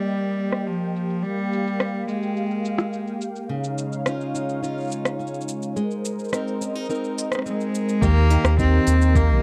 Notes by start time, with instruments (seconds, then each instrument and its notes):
Already playing: cello G3, analog synth pad A#3 G4 D#5 G5
0.11 shaker
0.39 shaker
0.41 shaker
0.43 shaker
0.46 shaker
0.48 shaker
0.51 cross-stick, shaker
0.53 shaker
0.67 cello F3, shaker
0.82 shaker
0.96 shaker
1.10 shaker
1.23 cello G3, analog synth pad F5, shaker
1.39 shaker
1.53 shaker
1.67 shaker
1.80 cross-stick, shaker
1.88 shaker
2.07 cello G#3, shaker
2.23 shaker
2.37 shaker
2.51 shaker
2.65 shaker
2.78 cross-stick, shaker
2.93 shaker
3.07 shaker
3.21 shaker
3.36 shaker
3.49 steel-string acoustic guitar C#3, analog synth pad G#3 D#4 C#5 F5
3.64 shaker
3.78 shaker
3.92 shaker
4.06 steel-string acoustic guitar C#4 D#4 F4, cross-stick, shaker
4.21 shaker
4.35 steel-string acoustic guitar D#4, shaker
4.49 shaker
4.63 steel-string acoustic guitar C#4 D#4 F4, shaker
4.78 shaker
4.80 shaker
4.82 shaker
4.85 shaker
4.87 shaker
4.90 shaker
4.92 shaker
5.05 cross-stick, shaker
5.19 steel-string acoustic guitar C#4, shaker
5.27 shaker
5.34 shaker
5.41 shaker
5.48 shaker
5.62 shaker
5.75 steel-string acoustic guitar G#3, analog synth pad A#4 C5 D#5, shaker
5.91 shaker
6.05 shaker
6.19 shaker
6.24 shaker
6.29 steel-string acoustic guitar C4, shaker
6.33 steel-string acoustic guitar D#4 A#4, cross-stick, shaker
6.48 shaker
6.61 steel-string acoustic guitar C#4, shaker
6.75 steel-string acoustic guitar D#4, shaker
6.85 shaker
6.89 steel-string acoustic guitar C4 D#4 A#4, shaker
6.95 shaker
7.04 shaker
7.18 shaker
7.32 cross-stick, shaker
7.35 cross-stick
7.39 cross-stick
7.42 cello G#3, steel-string acoustic guitar C4, cross-stick
7.46 shaker
7.61 shaker
7.75 shaker
7.89 shaker
8.02 sub bass D#2, steel-string acoustic guitar D#3 G4, cello A#3, analog synth pad D#4 G4 A#4 G5, kick, shaker
8.30 steel-string acoustic guitar D#4, open hi-hat
8.44 sub bass D#2, cross-stick, shaker
8.59 steel-string acoustic guitar A#3 D#4 G4, cello C4, kick, shaker
8.87 sub bass D#2, open hi-hat, shaker
9.02 shaker
9.15 cello A#3, kick, shaker
9.30 sub bass A#1